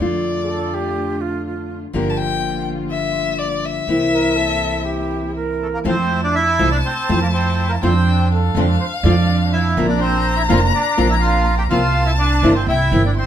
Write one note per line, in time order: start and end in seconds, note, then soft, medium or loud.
0.00 1.84 F2 medium
0.00 1.92 D3 medium
0.00 1.93 A3 medium
0.00 1.84 A3 medium
0.00 1.84 D4 medium
0.00 1.93 D4 medium
0.00 1.84 F4 medium
0.00 1.94 F4 medium
0.00 0.93 D5 medium
0.43 0.51 G#4 medium
0.49 0.75 A4 loud
0.74 1.22 G4 medium
1.21 1.45 F4 medium
1.46 1.79 F4 medium
1.93 3.78 G1 medium
1.93 3.87 D3 medium
1.93 3.87 F3 medium
1.93 3.78 G3 medium
1.93 3.87 A#3 medium
1.93 3.79 A#3 medium
1.93 3.88 D4 medium
1.93 3.79 F4 medium
1.93 3.88 G4 medium
1.93 2.12 A#4 medium
2.10 2.19 A5 medium
2.17 2.66 G5 loud
2.91 3.40 E5 medium
3.38 3.66 D5 medium
3.65 5.36 E5 loud
3.87 5.75 C2 medium
3.87 5.84 C3 medium
3.87 5.84 E3 medium
3.87 5.75 A#3 medium
3.87 5.84 A#3 medium
3.87 5.75 C4 medium
3.87 5.84 C4 medium
3.87 5.75 E4 medium
3.87 5.85 E4 medium
4.12 4.38 A#4 medium
4.36 4.87 A4 medium
4.85 5.34 G4 medium
5.35 5.81 A#4 medium
5.62 5.67 A3 medium
5.62 5.67 A4 medium
5.73 5.79 A#3 medium
5.73 5.79 A#4 medium
5.84 6.55 F2 medium
5.84 5.94 C3 medium
5.84 5.94 E3 medium
5.84 6.56 F3 medium
5.84 5.94 A3 medium
5.84 6.56 A3 medium
5.84 5.94 C4 loud
5.84 6.21 C4 medium
5.84 6.56 E4 medium
5.84 5.94 F4 loud
5.84 6.21 C5 medium
5.84 7.83 A5 loud
6.24 6.35 D4 medium
6.24 6.35 D5 medium
6.35 6.70 E4 medium
6.35 6.69 E5 loud
6.59 6.80 C2 medium
6.59 6.68 C3 medium
6.59 6.68 E3 medium
6.59 6.80 F3 medium
6.59 6.68 A3 medium
6.59 6.80 A3 medium
6.59 6.68 C4 loud
6.59 6.80 E4 loud
6.59 6.68 F4 loud
6.72 6.78 D4 medium
6.72 6.77 D5 loud
6.86 7.20 C4 medium
6.86 7.19 C5 medium
7.09 7.79 F2 loud
7.09 7.18 C3 medium
7.09 7.18 E3 medium
7.09 7.79 F3 loud
7.09 7.79 A3 medium
7.09 7.18 A3 medium
7.09 7.18 C4 medium
7.09 7.79 E4 loud
7.09 7.18 F4 medium
7.22 7.27 A#3 medium
7.22 7.27 A#4 medium
7.34 7.68 C4 medium
7.34 7.71 C5 medium
7.69 7.75 A#3 medium
7.69 7.75 A#4 loud
7.81 8.52 F2 loud
7.81 7.91 D3 medium
7.81 8.52 F3 medium
7.81 7.92 A3 loud
7.81 8.52 C4 medium
7.81 8.28 C4 medium
7.81 7.92 C4 loud
7.81 8.52 D4 loud
7.81 7.92 F4 loud
7.81 8.28 C5 medium
7.81 8.33 G5 loud
8.31 8.77 A4 medium
8.31 9.78 F5 loud
8.55 8.76 F2 loud
8.55 8.65 D3 loud
8.55 8.76 F3 loud
8.55 8.65 A3 loud
8.55 8.76 C4 medium
8.55 8.65 C4 loud
8.55 8.76 D4 loud
8.55 8.65 F4 loud
8.79 8.86 C5 loud
9.03 9.73 F2 loud
9.03 9.13 D3 medium
9.03 9.73 F3 loud
9.03 9.13 A3 medium
9.03 9.73 C4 medium
9.03 9.13 C4 loud
9.03 9.73 D4 loud
9.03 9.14 F4 loud
9.03 9.38 D5 loud
9.53 9.86 E4 medium
9.53 9.87 E5 medium
9.77 10.46 A#1 loud
9.77 9.86 D3 medium
9.77 10.46 A#3 loud
9.77 9.86 A#3 loud
9.77 10.46 C4 loud
9.77 9.86 C4 loud
9.77 10.46 D4 loud
9.77 9.86 F4 loud
9.77 11.70 A#5 loud
9.88 10.00 D4 medium
9.88 10.00 D5 medium
10.01 10.35 C4 medium
10.01 10.38 C5 loud
10.36 10.42 E4 medium
10.36 10.42 E5 medium
10.49 10.70 F1 loud
10.49 10.58 D3 loud
10.49 10.58 A#3 loud
10.49 10.69 A#3 loud
10.49 10.70 C4 medium
10.49 10.58 C4 loud
10.49 10.70 D4 loud
10.49 10.58 F4 loud
10.49 10.61 F4 medium
10.49 10.60 F5 loud
10.74 11.08 D4 medium
10.74 11.11 D5 medium
10.97 11.67 A#1 loud
10.97 11.06 D3 medium
10.97 11.06 A#3 medium
10.97 11.67 A#3 loud
10.97 11.67 C4 loud
10.97 11.07 C4 loud
10.97 11.67 D4 loud
10.97 11.07 F4 loud
11.10 11.16 E4 medium
11.10 11.15 E5 medium
11.20 11.55 F4 medium
11.20 11.55 F5 loud
11.58 11.64 G4 medium
11.58 11.63 G5 medium
11.70 12.40 C2 loud
11.70 11.79 C3 loud
11.70 11.80 F3 medium
11.70 12.39 A#3 loud
11.70 11.80 A#3 loud
11.70 12.39 C4 medium
11.70 11.80 C4 medium
11.70 12.04 F4 medium
11.70 12.40 F4 loud
11.70 11.80 F4 loud
11.70 12.08 F5 loud
11.70 12.64 A5 loud
12.05 12.12 E4 medium
12.05 12.11 E5 medium
12.18 12.53 D4 medium
12.18 12.53 D5 loud
12.42 12.63 G1 medium
12.42 12.52 C3 medium
12.42 12.52 E3 loud
12.42 12.64 A#3 medium
12.42 12.52 A#3 loud
12.42 12.64 C4 medium
12.42 12.52 C4 loud
12.42 12.52 E4 loud
12.42 12.64 F4 loud
12.55 12.67 C4 medium
12.55 12.66 C5 medium
12.67 12.88 C2 loud
12.67 12.88 A#3 medium
12.67 12.88 C4 medium
12.67 12.88 E4 medium
12.67 13.02 E4 medium
12.67 13.02 E5 loud
12.67 13.14 G5 loud
12.92 13.26 G1 loud
12.92 13.01 C3 medium
12.92 13.01 E3 medium
12.92 13.26 A#3 medium
12.92 13.01 A#3 medium
12.92 13.26 C4 medium
12.92 13.01 C4 medium
12.92 13.01 E4 medium
12.92 13.26 E4 loud
13.05 13.11 D4 medium
13.05 13.11 D5 medium
13.17 13.26 C4 medium
13.17 13.26 C5 medium
13.17 13.26 C6 loud